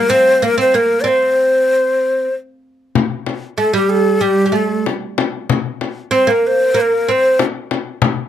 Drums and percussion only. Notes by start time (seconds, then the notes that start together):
2.95 frame drum
3.26 frame drum
4.86 frame drum
5.18 frame drum
5.50 frame drum
5.81 frame drum
7.39 frame drum
7.71 frame drum
8.02 frame drum